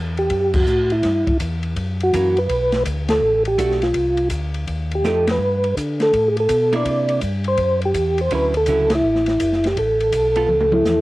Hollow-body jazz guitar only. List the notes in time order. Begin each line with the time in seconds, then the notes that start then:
2.14 E3 A#3 C#4
3.58 A3 D4 F#4
5.05 F3 A3 D#4 G4
6.73 A#3 D4 E4
8.32 D3 F#3 C#4 E4
8.68 D3 F#3 C#4 E4
10.36 B3 F4 A4